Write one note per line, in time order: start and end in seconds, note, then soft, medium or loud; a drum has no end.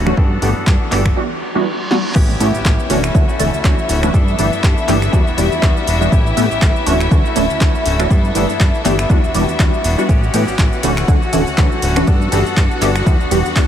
0.00 0.13 D1 loud
0.00 1.16 F#4 medium
0.00 1.16 F#5 medium
0.06 0.12 E3 medium
0.06 0.12 A3 medium
0.06 0.17 A3 medium
0.06 0.12 C#4 medium
0.06 0.18 C#4 medium
0.06 0.12 D4 medium
0.06 0.17 F#4 medium
0.06 0.13 F#4 loud
0.06 finger snap medium
0.17 0.38 G2 loud
0.17 0.31 E3 medium
0.17 0.31 B3 medium
0.17 0.31 D4 medium
0.17 0.30 A4 loud
0.17 kick loud
0.31 0.41 B3 medium
0.31 0.42 D4 medium
0.31 0.42 A4 medium
0.42 0.53 G1 loud
0.42 0.65 E3 medium
0.42 0.50 E3 medium
0.42 0.50 A3 medium
0.42 0.50 B3 medium
0.42 0.66 B3 medium
0.42 0.50 D4 medium
0.42 0.67 D4 medium
0.42 0.50 G4 medium
0.42 0.67 A4 medium
0.42 open hi-hat loud
0.66 0.78 G2 medium
0.66 0.90 E3 medium
0.66 0.91 B3 medium
0.66 0.92 A4 medium
0.66 kick loud
0.66 clap loud
0.91 1.12 G1 medium
0.91 1.16 E3 medium
0.91 0.99 E3 loud
0.91 0.99 A3 medium
0.91 0.99 B3 medium
0.91 1.17 B3 medium
0.91 0.99 D4 medium
0.91 1.17 D4 medium
0.91 1.00 G4 loud
0.91 1.18 A4 medium
0.91 clap medium
0.91 open hi-hat loud
1.06 finger snap medium
1.06 kick medium
1.16 1.24 E3 loud
1.16 1.24 G3 medium
1.16 1.24 B3 medium
1.16 1.24 D4 medium
1.16 1.24 F#4 loud
1.16 reverse cymbal medium
1.55 1.65 E3 medium
1.55 1.65 G3 medium
1.55 1.65 B3 medium
1.55 1.65 D4 medium
1.55 1.65 F#4 loud
1.91 1.98 E3 medium
1.91 1.98 G3 medium
1.91 1.99 B3 medium
1.91 1.99 D4 medium
1.91 1.99 F#4 loud
1.91 snare medium
2.15 2.36 A1 loud
2.15 2.39 E3 medium
2.15 2.40 B3 loud
2.15 2.40 C#4 loud
2.15 10.10 E4 medium
2.15 2.41 G4 loud
2.15 10.10 E5 medium
2.15 kick loud
2.15 crash loud
2.15 impact medium
2.15 shaker soft
2.30 shaker soft
2.40 2.52 A2 medium
2.40 2.54 E3 medium
2.40 2.48 E3 medium
2.40 2.48 A3 medium
2.40 2.48 B3 medium
2.40 2.54 B3 medium
2.40 2.48 C#4 medium
2.40 2.54 C#4 medium
2.40 2.48 G4 medium
2.40 2.52 G4 medium
2.40 open hi-hat loud
2.40 shaker medium
2.54 2.63 A1 soft
2.54 2.64 B3 medium
2.54 2.65 C#4 medium
2.54 2.65 G4 medium
2.54 shaker soft
2.65 2.77 A1 medium
2.65 2.88 E3 medium
2.65 2.90 B3 loud
2.65 2.90 C#4 medium
2.65 2.91 G4 loud
2.65 kick loud
2.65 clap loud
2.65 shaker soft
2.79 shaker soft
2.89 3.11 D1 medium
2.89 3.28 E3 medium
2.89 2.97 E3 loud
2.89 2.98 A3 medium
2.89 3.29 A3 medium
2.89 2.98 C#4 medium
2.89 3.28 C#4 medium
2.89 2.98 D4 medium
2.89 2.98 F#4 loud
2.89 3.27 F#4 medium
2.89 open hi-hat loud
2.89 shaker medium
3.04 finger snap medium
3.04 shaker soft
3.14 3.26 D2 loud
3.14 3.22 E3 loud
3.14 3.22 A3 medium
3.14 3.22 C#4 medium
3.14 3.23 D4 medium
3.14 3.23 F#4 loud
3.14 kick loud
3.14 shaker soft
3.28 3.63 A3 medium
3.28 3.64 C#4 medium
3.28 3.64 F#4 medium
3.28 shaker soft
3.39 3.51 D1 loud
3.39 3.47 E3 medium
3.39 3.47 A3 medium
3.39 3.47 C#4 medium
3.39 3.47 D4 medium
3.39 3.47 A4 loud
3.39 open hi-hat loud
3.39 shaker medium
3.54 3.62 D2 soft
3.54 shaker soft
3.64 3.76 D2 medium
3.64 3.76 E3 medium
3.64 3.87 E3 medium
3.64 3.77 A3 medium
3.64 3.88 A3 medium
3.64 3.77 C#4 medium
3.64 3.89 C#4 loud
3.64 3.77 D4 medium
3.64 3.77 F#4 loud
3.64 3.90 F#4 loud
3.64 kick loud
3.64 clap loud
3.64 shaker medium
3.79 shaker soft
3.88 4.10 D1 loud
3.88 4.03 E3 medium
3.88 4.03 A3 medium
3.88 4.03 C#4 medium
3.88 4.01 F#4 medium
3.88 open hi-hat loud
3.88 shaker medium
4.02 4.09 E3 medium
4.02 4.09 A3 medium
4.02 4.14 A3 soft
4.02 4.09 C#4 medium
4.02 4.14 C#4 medium
4.02 4.09 D4 medium
4.02 4.14 F#4 medium
4.02 4.09 F#4 loud
4.02 finger snap medium
4.02 shaker soft
4.13 4.35 G2 loud
4.13 4.37 E3 medium
4.13 4.38 B3 medium
4.13 4.39 D4 medium
4.13 4.40 A4 loud
4.13 kick loud
4.13 shaker soft
4.28 shaker soft
4.38 4.50 G1 medium
4.38 4.52 E3 medium
4.38 4.46 E3 medium
4.38 4.46 A3 medium
4.38 4.46 B3 medium
4.38 4.53 B3 medium
4.38 4.47 D4 medium
4.38 4.52 D4 medium
4.38 4.47 G4 loud
4.38 4.51 A4 medium
4.38 open hi-hat loud
4.38 shaker medium
4.52 4.61 G2 soft
4.52 4.63 B3 medium
4.52 4.63 D4 medium
4.52 4.63 A4 medium
4.52 shaker soft
4.63 4.75 G2 medium
4.63 4.86 E3 medium
4.63 4.87 B3 loud
4.63 4.88 D4 loud
4.63 4.89 A4 loud
4.63 kick loud
4.63 clap loud
4.63 shaker soft
4.78 shaker soft
4.88 5.09 G1 medium
4.88 5.12 E3 medium
4.88 4.96 E3 loud
4.88 4.96 A3 loud
4.88 4.96 B3 medium
4.88 5.12 B3 medium
4.88 4.96 D4 medium
4.88 5.13 D4 medium
4.88 4.96 G4 loud
4.88 5.14 A4 medium
4.88 clap medium
4.88 open hi-hat loud
4.88 shaker medium
5.02 finger snap medium
5.02 shaker soft
5.12 5.24 E2 loud
5.12 5.20 E3 loud
5.12 5.27 G3 medium
5.12 5.21 G3 medium
5.12 5.21 B3 medium
5.12 5.27 B3 medium
5.12 5.21 D4 medium
5.12 5.27 D4 medium
5.12 5.21 F#4 loud
5.12 5.25 F#4 loud
5.12 kick loud
5.12 shaker soft
5.26 5.36 E1 soft
5.26 5.62 B3 soft
5.26 5.62 D4 medium
5.26 5.62 F#4 medium
5.26 shaker soft
5.37 5.49 E1 loud
5.37 5.45 E3 medium
5.37 5.45 G3 medium
5.37 5.45 B3 medium
5.37 5.46 D4 medium
5.37 5.46 G4 loud
5.37 open hi-hat loud
5.37 shaker medium
5.52 5.61 E2 soft
5.52 shaker soft
5.62 5.74 E2 medium
5.62 5.75 E3 medium
5.62 5.75 G3 medium
5.62 5.86 G3 medium
5.62 5.75 B3 medium
5.62 5.87 B3 loud
5.62 5.75 D4 medium
5.62 5.88 D4 loud
5.62 5.75 F#4 medium
5.62 5.88 F#4 loud
5.62 kick loud
5.62 clap loud
5.62 shaker soft
5.77 shaker soft
5.87 6.08 E1 medium
5.87 6.01 G3 medium
5.87 6.02 B3 medium
5.87 6.01 D4 medium
5.87 6.00 F#4 medium
5.87 open hi-hat loud
5.87 shaker medium
6.01 6.07 E3 medium
6.01 6.07 G3 medium
6.01 6.07 B3 medium
6.01 6.11 B3 medium
6.01 6.07 D4 medium
6.01 6.13 D4 medium
6.01 6.12 F#4 medium
6.01 6.08 F#4 loud
6.01 shaker soft
6.12 6.33 A1 loud
6.12 6.35 E3 loud
6.12 6.36 B3 loud
6.12 6.37 C#4 medium
6.12 6.38 G4 loud
6.12 kick loud
6.12 shaker soft
6.27 shaker soft
6.36 6.49 A2 medium
6.36 6.51 E3 medium
6.36 6.44 E3 medium
6.36 6.45 A3 medium
6.36 6.45 B3 medium
6.36 6.51 B3 medium
6.36 6.45 C#4 medium
6.36 6.51 C#4 medium
6.36 6.45 G4 medium
6.36 6.49 G4 medium
6.36 open hi-hat loud
6.36 shaker medium
6.50 6.60 A1 soft
6.50 6.61 B3 medium
6.50 6.62 C#4 medium
6.50 6.62 G4 medium
6.50 shaker soft
6.61 6.73 A1 medium
6.61 6.85 E3 medium
6.61 6.87 B3 medium
6.61 6.87 C#4 medium
6.61 6.87 G4 medium
6.61 kick loud
6.61 clap loud
6.61 shaker soft
6.76 shaker soft
6.86 7.08 D1 medium
6.86 7.25 E3 medium
6.86 6.94 E3 loud
6.86 6.94 A3 medium
6.86 7.25 A3 medium
6.86 6.94 C#4 medium
6.86 7.25 C#4 medium
6.86 6.94 D4 loud
6.86 6.94 F#4 loud
6.86 7.23 F#4 medium
6.86 open hi-hat loud
6.86 shaker medium
7.00 finger snap medium
7.00 shaker soft
7.11 7.23 D2 loud
7.11 7.19 E3 loud
7.11 7.19 A3 medium
7.11 7.19 C#4 medium
7.11 7.19 D4 medium
7.11 7.19 F#4 loud
7.11 kick loud
7.11 shaker soft
7.25 7.60 A3 medium
7.25 7.61 C#4 medium
7.25 7.61 F#4 medium
7.25 shaker soft
7.35 7.48 D1 loud
7.35 7.44 E3 medium
7.35 7.44 A3 medium
7.35 7.44 C#4 medium
7.35 7.44 D4 medium
7.35 7.44 A4 loud
7.35 open hi-hat loud
7.35 shaker medium
7.50 7.59 D2 soft
7.50 shaker soft
7.60 7.72 D2 medium
7.60 7.84 E3 loud
7.60 7.73 E3 medium
7.60 7.73 A3 medium
7.60 7.85 A3 medium
7.60 7.73 C#4 medium
7.60 7.86 C#4 medium
7.60 7.73 D4 medium
7.60 7.74 F#4 loud
7.60 7.86 F#4 loud
7.60 kick loud
7.60 clap loud
7.60 shaker soft
7.75 shaker soft
7.85 8.07 D1 loud
7.85 7.99 E3 medium
7.85 8.00 A3 medium
7.85 7.99 C#4 medium
7.85 7.98 F#4 medium
7.85 open hi-hat loud
7.85 shaker medium
7.99 8.06 E3 medium
7.99 8.06 A3 medium
7.99 8.10 A3 soft
7.99 8.06 C#4 medium
7.99 8.11 C#4 medium
7.99 8.06 D4 medium
7.99 8.10 F#4 medium
7.99 8.06 F#4 loud
7.99 finger snap medium
7.99 shaker soft
8.10 8.31 G2 loud
8.10 8.33 E3 medium
8.10 8.35 B3 medium
8.10 8.35 D4 medium
8.10 8.36 A4 loud
8.10 kick loud
8.10 shaker soft
8.25 shaker soft
8.35 8.47 G1 medium
8.35 8.49 E3 medium
8.35 8.43 E3 medium
8.35 8.43 A3 medium
8.35 8.43 B3 medium
8.35 8.49 B3 medium
8.35 8.43 D4 medium
8.35 8.49 D4 medium
8.35 8.43 G4 medium
8.35 8.47 A4 medium
8.35 open hi-hat loud
8.35 shaker medium
8.49 8.58 G2 soft
8.49 8.59 B3 medium
8.49 8.60 D4 medium
8.49 8.60 A4 medium
8.49 shaker soft
8.60 8.72 G2 medium
8.60 8.83 E3 medium
8.60 8.84 B3 medium
8.60 8.85 D4 loud
8.60 8.86 A4 loud
8.60 kick loud
8.60 clap loud
8.60 shaker soft
8.74 shaker soft
8.84 9.06 G1 medium
8.84 9.09 E3 medium
8.84 8.92 E3 loud
8.84 8.93 A3 medium
8.84 8.93 B3 medium
8.84 9.09 B3 medium
8.84 8.93 D4 medium
8.84 9.10 D4 medium
8.84 8.93 G4 loud
8.84 9.11 A4 medium
8.84 clap medium
8.84 open hi-hat loud
8.84 shaker medium
8.99 finger snap medium
8.99 shaker soft
9.09 9.21 E2 loud
9.09 9.17 E3 loud
9.09 9.23 G3 medium
9.09 9.17 G3 medium
9.09 9.17 B3 medium
9.09 9.24 B3 medium
9.09 9.18 D4 medium
9.09 9.23 D4 medium
9.09 9.18 F#4 loud
9.09 9.22 F#4 loud
9.09 kick loud
9.09 shaker soft
9.23 9.32 E1 soft
9.23 9.59 B3 medium
9.23 9.59 D4 medium
9.23 9.59 F#4 medium
9.23 shaker soft
9.34 9.46 E1 loud
9.34 9.42 E3 medium
9.34 9.42 G3 medium
9.34 9.42 B3 medium
9.34 9.42 D4 medium
9.34 9.43 G4 loud
9.34 open hi-hat loud
9.34 shaker medium
9.49 9.57 E2 soft
9.49 shaker soft
9.59 9.71 E2 medium
9.59 9.72 E3 medium
9.59 9.82 G3 medium
9.59 9.72 G3 medium
9.59 9.83 B3 medium
9.59 9.72 B3 medium
9.59 9.72 D4 medium
9.59 9.84 D4 loud
9.59 9.72 F#4 medium
9.59 9.85 F#4 loud
9.59 kick loud
9.59 clap loud
9.59 shaker soft
9.74 shaker soft
9.84 9.96 E1 medium
9.84 9.98 G3 medium
9.84 9.98 B3 medium
9.84 9.98 D4 medium
9.84 9.96 F#4 medium
9.84 open hi-hat loud
9.84 shaker medium
9.97 10.04 E3 medium
9.97 10.04 G3 medium
9.97 10.04 B3 medium
9.97 10.08 B3 soft
9.97 10.04 D4 medium
9.97 10.09 D4 soft
9.97 10.09 F#4 medium
9.97 10.04 F#4 loud
9.97 shaker soft
10.09 10.30 A1 loud
10.09 10.23 E3 medium
10.09 10.23 B3 medium
10.09 10.23 C#4 loud
10.09 13.67 F#4 medium
10.09 10.21 G4 loud
10.09 13.67 F#5 medium
10.09 kick loud
10.09 ride medium
10.09 shaker soft
10.22 10.33 B3 soft
10.22 10.34 C#4 medium
10.22 10.33 G4 medium
10.22 shaker soft
10.33 10.45 A2 medium
10.33 10.47 E3 medium
10.33 10.41 E3 medium
10.33 10.41 A3 medium
10.33 10.42 B3 medium
10.33 10.48 B3 medium
10.33 10.42 C#4 medium
10.33 10.47 C#4 medium
10.33 10.42 G4 medium
10.33 10.46 G4 medium
10.33 open hi-hat loud
10.33 ride medium
10.33 shaker medium
10.47 10.56 A1 soft
10.47 10.58 B3 soft
10.47 10.58 C#4 medium
10.47 10.58 G4 medium
10.47 shaker soft
10.58 10.70 A1 medium
10.58 10.81 E3 medium
10.58 10.83 B3 medium
10.58 10.83 C#4 loud
10.58 10.84 G4 loud
10.58 kick loud
10.58 clap loud
10.58 ride medium
10.58 shaker soft
10.73 shaker soft
10.82 11.04 D1 medium
10.82 11.22 E3 medium
10.82 10.91 E3 loud
10.82 10.91 A3 medium
10.82 11.22 A3 medium
10.82 10.91 C#4 medium
10.82 11.22 C#4 medium
10.82 10.91 D4 medium
10.82 10.91 F#4 loud
10.82 11.20 F#4 medium
10.82 open hi-hat loud
10.82 ride medium
10.82 shaker medium
10.97 finger snap medium
10.97 shaker soft
11.08 11.20 D2 loud
11.08 11.16 E3 loud
11.08 11.16 A3 medium
11.08 11.16 C#4 medium
11.08 11.16 D4 medium
11.08 11.16 F#4 loud
11.08 kick loud
11.08 ride medium
11.08 shaker soft
11.21 11.57 A3 medium
11.21 11.57 C#4 medium
11.21 11.57 F#4 medium
11.21 shaker soft
11.33 11.44 D1 loud
11.33 11.40 E3 medium
11.33 11.41 A3 medium
11.33 11.41 C#4 medium
11.33 11.41 D4 medium
11.33 11.41 A4 medium
11.33 open hi-hat loud
11.33 ride medium
11.33 shaker medium
11.47 11.56 D2 soft
11.47 shaker soft
11.57 11.69 D2 medium
11.57 11.80 E3 medium
11.57 11.70 E3 medium
11.57 11.70 A3 medium
11.57 11.82 A3 medium
11.57 11.70 C#4 medium
11.57 11.83 C#4 loud
11.57 11.70 D4 medium
11.57 11.70 F#4 loud
11.57 11.83 F#4 loud
11.57 kick loud
11.57 clap loud
11.57 ride medium
11.57 shaker soft
11.72 shaker soft
11.82 12.03 D1 loud
11.82 11.96 E3 medium
11.82 11.97 A3 medium
11.82 11.96 C#4 medium
11.82 11.95 F#4 medium
11.82 open hi-hat loud
11.82 ride medium
11.82 shaker medium
11.96 12.02 E3 loud
11.96 12.02 A3 medium
11.96 12.07 A3 medium
11.96 12.03 C#4 medium
11.96 12.08 C#4 medium
11.96 12.03 D4 medium
11.96 12.07 F#4 medium
11.96 12.03 F#4 loud
11.96 finger snap medium
11.96 shaker soft
12.07 12.28 G2 loud
12.07 12.30 E3 medium
12.07 12.31 B3 loud
12.07 12.32 D4 loud
12.07 12.33 A4 loud
12.07 kick loud
12.07 ride medium
12.07 shaker soft
12.21 shaker soft
12.31 12.43 G1 loud
12.31 12.46 E3 medium
12.31 12.40 E3 medium
12.31 12.40 A3 medium
12.31 12.40 B3 medium
12.31 12.46 B3 medium
12.31 12.40 D4 medium
12.31 12.46 D4 medium
12.31 12.40 G4 medium
12.31 12.44 A4 medium
12.31 open hi-hat loud
12.31 ride medium
12.31 shaker medium
12.45 12.55 G2 soft
12.45 12.56 B3 medium
12.45 12.57 D4 medium
12.45 12.56 A4 medium
12.45 shaker soft
12.56 12.68 G2 medium
12.56 12.80 E3 medium
12.56 12.81 B3 medium
12.56 12.82 D4 loud
12.56 12.82 A4 loud
12.56 kick loud
12.56 clap loud
12.56 ride medium
12.56 shaker soft
12.71 shaker soft
12.81 13.02 G1 medium
12.81 13.05 E3 medium
12.81 12.89 E3 loud
12.81 12.89 A3 loud
12.81 12.89 B3 medium
12.81 13.05 B3 medium
12.81 12.90 D4 medium
12.81 13.06 D4 medium
12.81 12.90 G4 loud
12.81 13.07 A4 medium
12.81 clap medium
12.81 open hi-hat loud
12.81 ride medium
12.81 shaker medium
12.96 finger snap medium
12.96 shaker soft
13.06 13.18 E2 loud
13.06 13.14 E3 loud
13.06 13.20 G3 medium
13.06 13.14 G3 medium
13.06 13.14 B3 medium
13.06 13.20 B3 medium
13.06 13.14 D4 medium
13.06 13.20 D4 medium
13.06 13.14 F#4 loud
13.06 13.18 F#4 loud
13.06 kick loud
13.06 ride medium
13.06 shaker soft
13.19 13.29 E1 soft
13.19 13.55 B3 medium
13.19 13.55 D4 medium
13.19 13.56 F#4 medium
13.19 shaker soft
13.31 13.43 E1 loud
13.31 13.39 E3 medium
13.31 13.39 G3 medium
13.31 13.39 B3 medium
13.31 13.39 D4 medium
13.31 13.39 G4 loud
13.31 open hi-hat loud
13.31 ride medium
13.31 shaker medium
13.45 13.54 E2 soft
13.45 shaker soft
13.55 13.67 E2 medium
13.55 13.67 E3 medium
13.55 13.67 G3 medium
13.55 13.67 B3 medium
13.55 13.67 D4 medium
13.55 13.67 D4 loud
13.55 13.67 F#4 loud
13.55 kick loud
13.55 clap loud
13.55 ride medium
13.55 shaker soft